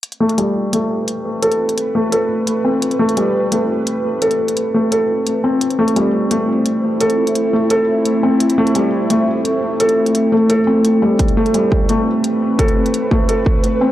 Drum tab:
HH |xx-xx---x---x---|xx-xx---x---x---|xx-xx---x---x---|xx-xx---x---x---|
BD |----------------|----------------|----------------|----------------|

HH |xx-xx---x---x---|xx-xx---x---x---|xx-xx---x---x---|xx-xx---x---x---|
BD |----------------|----------------|----------------|----------------|

HH |xx-xx---x---x---|xx-xx---x---x---|
BD |o-----o---------|o-----o---o-----|